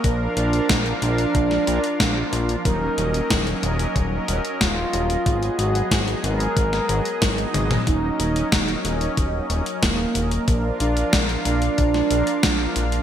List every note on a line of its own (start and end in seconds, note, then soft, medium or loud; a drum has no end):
0.00 0.24 A#3 loud
0.00 2.61 A#4 medium
0.04 0.28 A#1 loud
0.04 1.63 F3 medium
0.04 1.63 A#3 medium
0.04 1.63 D4 medium
0.04 2.63 D4 medium
0.04 2.63 F4 medium
0.04 1.63 A#4 medium
0.04 2.63 F5 medium
0.04 kick loud
0.04 closed hi-hat medium
0.37 0.61 A#1 medium
0.37 0.77 D4 medium
0.37 closed hi-hat medium
0.53 closed hi-hat soft
0.69 0.93 A#1 loud
0.69 kick loud
0.69 snare loud
0.69 closed hi-hat medium
0.86 closed hi-hat soft
1.02 1.26 A#1 medium
1.02 2.52 D4 loud
1.02 closed hi-hat medium
1.18 closed hi-hat soft
1.35 1.58 A#1 medium
1.35 kick loud
1.35 closed hi-hat medium
1.51 snare soft
1.67 1.79 A#1 loud
1.67 1.81 F3 medium
1.67 1.81 A#3 medium
1.67 1.81 D4 medium
1.67 1.81 A#4 loud
1.67 closed hi-hat medium
1.84 closed hi-hat soft
2.00 2.24 A#1 medium
2.00 2.61 F3 medium
2.00 2.61 A#3 medium
2.00 2.61 D4 medium
2.00 2.61 F4 medium
2.00 kick loud
2.00 snare loud
2.00 closed hi-hat medium
2.33 2.56 A#1 medium
2.33 closed hi-hat medium
2.49 closed hi-hat soft
2.65 2.89 D#1 medium
2.65 4.24 F#3 medium
2.65 5.23 F#3 medium
2.65 4.24 A#3 medium
2.65 4.24 C#4 medium
2.65 5.23 C#4 medium
2.65 4.24 D#4 medium
2.65 3.50 A#4 loud
2.65 5.23 A#4 medium
2.65 10.44 D#5 medium
2.65 kick loud
2.65 closed hi-hat medium
2.98 3.21 D#1 medium
2.98 closed hi-hat medium
3.14 closed hi-hat soft
3.30 3.54 D#1 loud
3.30 kick loud
3.30 snare loud
3.30 closed hi-hat medium
3.47 closed hi-hat soft
3.63 3.87 D#1 medium
3.63 closed hi-hat medium
3.79 closed hi-hat soft
3.96 4.19 D#1 medium
3.96 kick loud
3.96 closed hi-hat medium
4.28 4.40 D#1 loud
4.28 4.41 F#3 medium
4.28 4.41 A#3 medium
4.28 4.41 C#4 medium
4.28 4.41 D#4 medium
4.28 closed hi-hat medium
4.45 closed hi-hat soft
4.61 4.85 D#1 medium
4.61 5.60 F4 loud
4.61 kick loud
4.61 snare loud
4.61 closed hi-hat medium
4.93 5.17 D#1 medium
4.93 closed hi-hat medium
5.10 closed hi-hat soft
5.26 5.50 G#1 loud
5.26 6.85 F#3 medium
5.26 10.44 F#3 medium
5.26 6.85 G#3 medium
5.26 7.84 B3 medium
5.26 6.85 B3 medium
5.26 7.84 G#4 medium
5.26 6.85 G#4 medium
5.26 kick loud
5.26 closed hi-hat medium
5.43 closed hi-hat soft
5.59 5.82 G#1 medium
5.59 5.99 F#4 medium
5.59 closed hi-hat medium
5.75 closed hi-hat soft
5.91 6.15 G#1 loud
5.91 kick loud
5.91 snare loud
5.91 closed hi-hat medium
6.08 closed hi-hat soft
6.24 6.48 G#1 medium
6.24 7.74 A#4 loud
6.24 closed hi-hat medium
6.40 closed hi-hat soft
6.57 6.80 G#1 medium
6.57 kick loud
6.57 closed hi-hat medium
6.73 snare soft
6.73 closed hi-hat soft
6.89 7.01 G#1 loud
6.89 7.02 F#3 medium
6.89 7.02 G#3 medium
6.89 7.02 B3 medium
6.89 7.02 F#4 loud
6.89 closed hi-hat medium
7.05 closed hi-hat medium
7.22 7.45 G#1 medium
7.22 7.83 F#3 medium
7.22 7.83 G#3 medium
7.22 7.83 B3 medium
7.22 7.83 D#4 medium
7.22 kick loud
7.22 snare loud
7.22 closed hi-hat medium
7.38 closed hi-hat soft
7.54 7.78 G#1 medium
7.54 closed hi-hat medium
7.54 high tom medium
7.71 closed hi-hat soft
7.71 mid tom medium
7.87 8.11 D#1 loud
7.87 9.46 F#3 medium
7.87 9.46 A#3 medium
7.87 9.46 C#4 medium
7.87 10.45 C#4 medium
7.87 8.72 D#4 loud
7.87 9.46 D#4 medium
7.87 13.03 A#4 medium
7.87 kick loud
7.87 closed hi-hat medium
8.20 8.43 D#1 medium
8.20 closed hi-hat medium
8.36 closed hi-hat medium
8.52 8.76 D#1 loud
8.52 kick loud
8.52 snare loud
8.52 closed hi-hat medium
8.68 closed hi-hat soft
8.85 9.08 D#1 medium
8.85 closed hi-hat medium
9.01 closed hi-hat medium
9.17 9.41 D#1 medium
9.17 kick loud
9.17 closed hi-hat medium
9.50 9.62 D#1 loud
9.50 9.63 F#3 medium
9.50 9.63 A#3 medium
9.50 9.63 C#4 medium
9.50 9.63 D#4 medium
9.50 closed hi-hat medium
9.66 closed hi-hat medium
9.83 10.06 D#1 medium
9.83 10.67 A#3 loud
9.83 kick loud
9.83 snare loud
9.83 closed hi-hat medium
10.15 10.39 D#1 medium
10.15 closed hi-hat medium
10.31 closed hi-hat medium
10.48 10.72 A#1 loud
10.48 12.07 F3 medium
10.48 12.07 A#3 medium
10.48 12.07 D4 medium
10.48 13.03 D4 medium
10.48 13.03 F4 medium
10.48 12.07 A#4 medium
10.48 13.03 F5 medium
10.48 kick loud
10.48 closed hi-hat medium
10.80 11.04 A#1 medium
10.80 11.21 D4 medium
10.80 closed hi-hat medium
10.97 closed hi-hat medium
11.13 11.37 A#1 loud
11.13 kick loud
11.13 snare loud
11.13 closed hi-hat medium
11.29 closed hi-hat soft
11.45 11.69 A#1 medium
11.45 12.96 D4 loud
11.45 closed hi-hat medium
11.62 closed hi-hat medium
11.78 12.02 A#1 medium
11.78 kick loud
11.78 closed hi-hat medium
11.94 snare soft
12.11 12.23 A#1 loud
12.11 12.24 F3 medium
12.11 12.24 A#3 medium
12.11 12.24 D4 medium
12.11 12.24 A#4 loud
12.11 closed hi-hat medium
12.27 closed hi-hat medium
12.43 12.67 A#1 medium
12.43 13.03 F3 medium
12.43 13.03 A#3 medium
12.43 13.03 D4 medium
12.43 13.03 F4 medium
12.43 kick loud
12.43 snare loud
12.43 closed hi-hat medium
12.76 13.00 A#1 medium
12.76 closed hi-hat medium
12.92 closed hi-hat medium